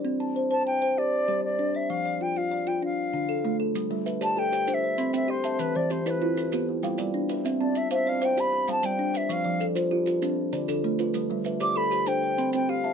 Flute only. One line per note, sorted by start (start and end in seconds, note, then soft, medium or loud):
0.52 0.66 A5 medium
0.67 1.00 G5 medium
0.98 1.44 D5 medium
1.45 1.77 D5 medium
1.76 1.91 E5 medium
1.90 2.24 F5 medium
2.22 2.39 G5 medium
2.37 2.69 F5 medium
2.68 2.83 G5 medium
2.85 3.57 F5 medium
4.23 4.40 A5 loud
4.39 4.70 G5 loud
4.70 5.15 E5 medium
4.70 4.75 G5 medium
5.15 5.32 E5 medium
5.30 5.61 C5 medium
5.60 5.78 B4 medium
5.76 5.93 D5 medium
5.92 6.08 C5 medium
6.07 6.68 B4 medium
6.07 6.11 D5 medium
7.62 7.79 D5 medium
7.77 7.92 E5 medium
7.93 8.10 E5 medium
8.09 8.26 F5 medium
8.25 8.42 G5 medium
8.40 8.69 B5 loud
8.71 8.87 A5 medium
8.85 9.18 G5 medium
9.17 9.34 E5 medium
9.32 9.65 F5 medium
11.62 11.79 D6 loud
11.77 12.09 B5 loud
12.08 12.54 G5 medium
12.54 12.71 G5 medium
12.69 12.93 F5 medium